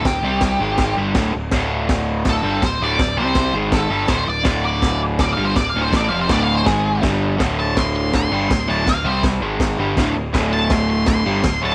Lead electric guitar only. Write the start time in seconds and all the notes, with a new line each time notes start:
0.06 G4
2.29 A4
2.65 C5
2.82 D5
3.19 C5
3.74 A4
4.09 C5
4.28 D5
4.65 D5
5.21 D5
5.32 F5
5.45 C5
5.57 D5
5.69 F5
5.83 C5
5.97 D5
6.09 F5
6.21 C5
6.32 D5
6.43 F5
6.55 C5
6.67 G#4
7.60 A5
7.78 C6
7.96 C6
8.16 C6
8.70 A5
8.89 F5
9.07 C5
10.53 A5
10.72 C6
10.90 C6
11.08 C6
11.65 A5